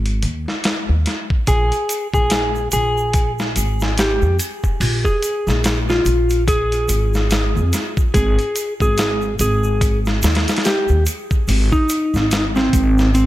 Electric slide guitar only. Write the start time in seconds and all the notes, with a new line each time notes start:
1.48 G#4
2.14 G#4
2.73 G#4
3.99 G4
5.05 G#4
5.90 F4
6.48 G#4
8.14 G#4
8.82 G#4
9.41 G#4
10.65 G4
11.72 D#4
12.56 C4
13.14 C4